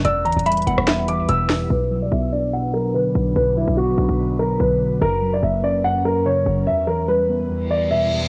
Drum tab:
HH |x-----------x---x---x---x--x--x--x--x-----------x-----------x-----------x-----------o-----------|------------------------------------------------------------------------------------------------|------------------------------------------------------------------------------------------------|------------------------------------------------------------------------------------------------|
SD |------------------------------------------r-----o-----------------------------------o-----------|------------------------------------------------------------------------------------------------|------------------------------------------------------------------------------------------------|------------------------------------------------------------------------------------------------|

HH |------------------------------------------------------------------------------------------------|
SD |------------------------------------------------------------------------------------------------|